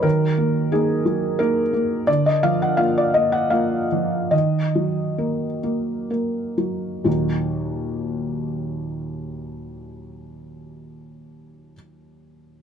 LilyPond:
<<
  \new Staff \with { instrumentName = "Felt piano" } { \time 3/4 \key ees \minor \tempo 4 = 66 bes'4 aes'4 bes'4 | d''16 ees''16 f''16 ges''16 f''16 d''16 ees''16 ges''16 f''4 | ees''2 r4 | <ees, bes, ges bes ees' ges'>2.~ |
<ees, bes, ges bes ees' ges'>2. | }
  \new Staff \with { instrumentName = "Felt piano" } { \time 3/4 \key ees \minor <ees ges>8 bes8 <bes ees'>8 ges8 <bes ees'>8 bes8 | d8 f8 <bes f'>8 bes8 <bes f'>8 f8 | ees8 ges8 <bes bes'>8 bes8 <bes bes'>8 ges8 | r2. |
r2. | }
>>